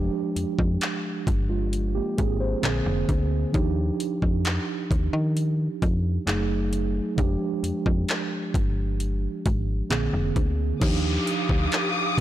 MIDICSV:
0, 0, Header, 1, 6, 480
1, 0, Start_track
1, 0, Tempo, 909091
1, 1870, Time_signature, 4, 2, 24, 8
1, 6445, End_track
2, 0, Start_track
2, 0, Title_t, "String section"
2, 0, Program_c, 0, 48
2, 5710, Note_on_c, 0, 87, 85
2, 5711, Note_on_c, 0, 67, 72
2, 5711, Note_on_c, 0, 77, 68
2, 5711, Note_on_c, 0, 86, 68
2, 6445, Note_off_c, 0, 67, 0
2, 6445, Note_off_c, 0, 77, 0
2, 6445, Note_off_c, 0, 86, 0
2, 6445, Note_off_c, 0, 87, 0
2, 6445, End_track
3, 0, Start_track
3, 0, Title_t, "Tine electric piano"
3, 0, Program_c, 1, 4
3, 0, Note_on_c, 1, 53, 72
3, 0, Note_on_c, 1, 56, 66
3, 0, Note_on_c, 1, 62, 65
3, 0, Note_on_c, 1, 67, 75
3, 59, Control_c, 1, 64, 127
3, 653, Note_off_c, 1, 56, 0
3, 656, Note_off_c, 1, 62, 0
3, 660, Note_off_c, 1, 67, 0
3, 789, Note_on_c, 1, 65, 57
3, 792, Note_on_c, 1, 56, 51
3, 1018, Note_off_c, 1, 65, 0
3, 1019, Note_off_c, 1, 56, 0
3, 1030, Note_on_c, 1, 67, 67
3, 1034, Note_on_c, 1, 58, 60
3, 1144, Note_off_c, 1, 67, 0
3, 1146, Note_off_c, 1, 58, 0
3, 1149, Note_on_c, 1, 68, 69
3, 1152, Note_on_c, 1, 60, 55
3, 1264, Note_off_c, 1, 68, 0
3, 1265, Note_off_c, 1, 60, 0
3, 1269, Note_on_c, 1, 72, 62
3, 1363, Note_off_c, 1, 53, 0
3, 1384, Note_on_c, 1, 50, 74
3, 1387, Note_on_c, 1, 58, 71
3, 1391, Note_on_c, 1, 60, 64
3, 1394, Note_on_c, 1, 68, 83
3, 1398, Control_c, 1, 64, 0
3, 1475, Control_c, 1, 64, 127
3, 1498, Note_off_c, 1, 72, 0
3, 1858, Note_on_c, 1, 53, 73
3, 1865, Note_on_c, 1, 62, 67
3, 1867, Note_off_c, 1, 50, 0
3, 1869, Note_off_c, 1, 58, 0
3, 1871, Note_off_c, 1, 60, 0
3, 1872, Note_off_c, 1, 68, 0
3, 1872, Note_on_c, 1, 63, 65
3, 1878, Control_c, 1, 64, 0
3, 1878, Note_on_c, 1, 67, 81
3, 1970, Control_c, 1, 64, 127
3, 3283, Note_off_c, 1, 53, 0
3, 3287, Note_off_c, 1, 62, 0
3, 3290, Note_off_c, 1, 63, 0
3, 3293, Note_off_c, 1, 67, 0
3, 3305, Note_on_c, 1, 54, 69
3, 3309, Note_on_c, 1, 57, 68
3, 3312, Note_on_c, 1, 63, 67
3, 3315, Note_on_c, 1, 68, 80
3, 3317, Control_c, 1, 64, 0
3, 3425, Control_c, 1, 64, 127
3, 3781, Note_on_c, 1, 53, 74
3, 3787, Note_on_c, 1, 56, 64
3, 3788, Note_off_c, 1, 54, 0
3, 3790, Note_off_c, 1, 57, 0
3, 3791, Note_off_c, 1, 63, 0
3, 3793, Note_off_c, 1, 68, 0
3, 3795, Note_on_c, 1, 62, 67
3, 3796, Control_c, 1, 64, 0
3, 3800, Note_on_c, 1, 67, 82
3, 3878, Control_c, 1, 64, 127
3, 5204, Note_off_c, 1, 53, 0
3, 5208, Note_off_c, 1, 56, 0
3, 5211, Note_off_c, 1, 62, 0
3, 5214, Note_off_c, 1, 67, 0
3, 5225, Note_on_c, 1, 50, 72
3, 5228, Note_on_c, 1, 58, 66
3, 5232, Note_on_c, 1, 60, 64
3, 5235, Note_on_c, 1, 68, 80
3, 5238, Control_c, 1, 64, 0
3, 5341, Control_c, 1, 64, 127
3, 5700, Note_on_c, 1, 53, 77
3, 5707, Note_on_c, 1, 62, 70
3, 5708, Note_off_c, 1, 50, 0
3, 5709, Note_off_c, 1, 58, 0
3, 5711, Note_off_c, 1, 60, 0
3, 5713, Note_off_c, 1, 68, 0
3, 5714, Note_on_c, 1, 63, 68
3, 5717, Control_c, 1, 64, 0
3, 5721, Note_on_c, 1, 67, 84
3, 5798, Control_c, 1, 64, 127
3, 6445, Note_off_c, 1, 53, 0
3, 6445, Note_off_c, 1, 62, 0
3, 6445, Note_off_c, 1, 63, 0
3, 6445, Note_off_c, 1, 67, 0
3, 6445, End_track
4, 0, Start_track
4, 0, Title_t, "FM bass"
4, 0, Program_c, 2, 39
4, 191, Note_on_c, 2, 41, 45
4, 239, Note_off_c, 2, 41, 0
4, 310, Note_on_c, 2, 41, 99
4, 407, Note_off_c, 2, 41, 0
4, 671, Note_on_c, 2, 31, 89
4, 1057, Note_off_c, 2, 31, 0
4, 1154, Note_on_c, 2, 32, 92
4, 1346, Note_off_c, 2, 32, 0
4, 1390, Note_on_c, 2, 34, 99
4, 1486, Note_off_c, 2, 34, 0
4, 1510, Note_on_c, 2, 29, 86
4, 1607, Note_off_c, 2, 29, 0
4, 1630, Note_on_c, 2, 38, 93
4, 1823, Note_off_c, 2, 38, 0
4, 1871, Note_on_c, 2, 39, 105
4, 2064, Note_off_c, 2, 39, 0
4, 2229, Note_on_c, 2, 41, 81
4, 2423, Note_off_c, 2, 41, 0
4, 2591, Note_on_c, 2, 39, 82
4, 2688, Note_off_c, 2, 39, 0
4, 2710, Note_on_c, 2, 51, 91
4, 3000, Note_off_c, 2, 51, 0
4, 3074, Note_on_c, 2, 41, 100
4, 3266, Note_off_c, 2, 41, 0
4, 3310, Note_on_c, 2, 30, 96
4, 3697, Note_off_c, 2, 30, 0
4, 3792, Note_on_c, 2, 29, 106
4, 3888, Note_off_c, 2, 29, 0
4, 4030, Note_on_c, 2, 41, 50
4, 4078, Note_off_c, 2, 41, 0
4, 4150, Note_on_c, 2, 41, 103
4, 4247, Note_off_c, 2, 41, 0
4, 4511, Note_on_c, 2, 31, 94
4, 4897, Note_off_c, 2, 31, 0
4, 4994, Note_on_c, 2, 32, 95
4, 5186, Note_off_c, 2, 32, 0
4, 5230, Note_on_c, 2, 34, 101
4, 5327, Note_off_c, 2, 34, 0
4, 5350, Note_on_c, 2, 29, 85
4, 5447, Note_off_c, 2, 29, 0
4, 5470, Note_on_c, 2, 38, 88
4, 5663, Note_off_c, 2, 38, 0
4, 5710, Note_on_c, 2, 39, 106
4, 5904, Note_off_c, 2, 39, 0
4, 6068, Note_on_c, 2, 38, 94
4, 6166, Note_off_c, 2, 38, 0
4, 6445, End_track
5, 0, Start_track
5, 0, Title_t, "Downlifter"
5, 0, Program_c, 3, 103
5, 5710, Note_on_c, 3, 60, 81
5, 6445, Note_off_c, 3, 60, 0
5, 6445, End_track
6, 0, Start_track
6, 0, Title_t, "Drums"
6, 192, Note_on_c, 9, 42, 80
6, 245, Note_off_c, 9, 42, 0
6, 309, Note_on_c, 9, 36, 86
6, 362, Note_off_c, 9, 36, 0
6, 429, Note_on_c, 9, 42, 68
6, 435, Note_on_c, 9, 39, 105
6, 481, Note_off_c, 9, 42, 0
6, 488, Note_off_c, 9, 39, 0
6, 671, Note_on_c, 9, 36, 92
6, 674, Note_on_c, 9, 42, 76
6, 724, Note_off_c, 9, 36, 0
6, 727, Note_off_c, 9, 42, 0
6, 913, Note_on_c, 9, 42, 70
6, 966, Note_off_c, 9, 42, 0
6, 1153, Note_on_c, 9, 42, 65
6, 1154, Note_on_c, 9, 36, 87
6, 1206, Note_off_c, 9, 36, 0
6, 1206, Note_off_c, 9, 42, 0
6, 1390, Note_on_c, 9, 42, 67
6, 1395, Note_on_c, 9, 39, 99
6, 1442, Note_off_c, 9, 42, 0
6, 1448, Note_off_c, 9, 39, 0
6, 1630, Note_on_c, 9, 36, 86
6, 1631, Note_on_c, 9, 42, 65
6, 1683, Note_off_c, 9, 36, 0
6, 1683, Note_off_c, 9, 42, 0
6, 1870, Note_on_c, 9, 42, 69
6, 1871, Note_on_c, 9, 36, 110
6, 1923, Note_off_c, 9, 36, 0
6, 1923, Note_off_c, 9, 42, 0
6, 2113, Note_on_c, 9, 42, 76
6, 2165, Note_off_c, 9, 42, 0
6, 2230, Note_on_c, 9, 36, 88
6, 2282, Note_off_c, 9, 36, 0
6, 2349, Note_on_c, 9, 42, 65
6, 2355, Note_on_c, 9, 39, 98
6, 2402, Note_off_c, 9, 42, 0
6, 2408, Note_off_c, 9, 39, 0
6, 2591, Note_on_c, 9, 36, 93
6, 2594, Note_on_c, 9, 42, 78
6, 2644, Note_off_c, 9, 36, 0
6, 2647, Note_off_c, 9, 42, 0
6, 2833, Note_on_c, 9, 42, 70
6, 2886, Note_off_c, 9, 42, 0
6, 3074, Note_on_c, 9, 36, 88
6, 3074, Note_on_c, 9, 42, 65
6, 3127, Note_off_c, 9, 36, 0
6, 3127, Note_off_c, 9, 42, 0
6, 3312, Note_on_c, 9, 42, 66
6, 3317, Note_on_c, 9, 39, 94
6, 3365, Note_off_c, 9, 42, 0
6, 3370, Note_off_c, 9, 39, 0
6, 3552, Note_on_c, 9, 42, 67
6, 3604, Note_off_c, 9, 42, 0
6, 3791, Note_on_c, 9, 36, 116
6, 3791, Note_on_c, 9, 42, 67
6, 3844, Note_off_c, 9, 36, 0
6, 3844, Note_off_c, 9, 42, 0
6, 4033, Note_on_c, 9, 42, 78
6, 4086, Note_off_c, 9, 42, 0
6, 4150, Note_on_c, 9, 36, 87
6, 4203, Note_off_c, 9, 36, 0
6, 4269, Note_on_c, 9, 42, 70
6, 4275, Note_on_c, 9, 39, 97
6, 4322, Note_off_c, 9, 42, 0
6, 4328, Note_off_c, 9, 39, 0
6, 4511, Note_on_c, 9, 36, 96
6, 4515, Note_on_c, 9, 42, 79
6, 4564, Note_off_c, 9, 36, 0
6, 4568, Note_off_c, 9, 42, 0
6, 4753, Note_on_c, 9, 42, 69
6, 4805, Note_off_c, 9, 42, 0
6, 4993, Note_on_c, 9, 42, 69
6, 4994, Note_on_c, 9, 36, 87
6, 5046, Note_off_c, 9, 36, 0
6, 5046, Note_off_c, 9, 42, 0
6, 5230, Note_on_c, 9, 42, 63
6, 5235, Note_on_c, 9, 39, 94
6, 5282, Note_off_c, 9, 42, 0
6, 5288, Note_off_c, 9, 39, 0
6, 5470, Note_on_c, 9, 36, 85
6, 5470, Note_on_c, 9, 42, 66
6, 5523, Note_off_c, 9, 36, 0
6, 5523, Note_off_c, 9, 42, 0
6, 5710, Note_on_c, 9, 42, 74
6, 5710, Note_on_c, 9, 49, 96
6, 5711, Note_on_c, 9, 36, 119
6, 5763, Note_off_c, 9, 36, 0
6, 5763, Note_off_c, 9, 42, 0
6, 5763, Note_off_c, 9, 49, 0
6, 5952, Note_on_c, 9, 42, 82
6, 6005, Note_off_c, 9, 42, 0
6, 6069, Note_on_c, 9, 36, 86
6, 6122, Note_off_c, 9, 36, 0
6, 6187, Note_on_c, 9, 42, 70
6, 6194, Note_on_c, 9, 39, 107
6, 6240, Note_off_c, 9, 42, 0
6, 6246, Note_off_c, 9, 39, 0
6, 6445, End_track
0, 0, End_of_file